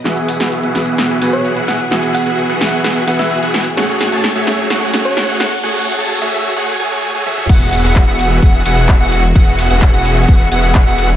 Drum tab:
CC |----------------|----------------|----------------|----------------|
RD |----------------|----------------|----------------|----------------|
HH |xxoxxxoxxxoxxxox|xxoxxxoxxxoxxxox|xxoxxxoxxxoxxxox|----------------|
CP |----------------|----------------|----------------|----------------|
SD |o--o--o-o-----o-|o-----o-o--o--o-|o-o-o-o-o-o-o-o-|----------------|
T1 |----------------|----------------|----------------|--------------o-|
T2 |----------------|----------------|----------------|---------------o|
BD |----------------|----------------|----------------|----------------|

CC |x---------------|----------------|
RD |x---x---x---x---|x---x---x---x---|
HH |xxoxxxoxxxoxxxox|xxoxxxoxxxoxxxox|
CP |----x-------x---|----x-------x---|
SD |----------------|----------------|
T1 |----------------|----------------|
T2 |----------------|----------------|
BD |o---o---o---o---|o---o---o---o---|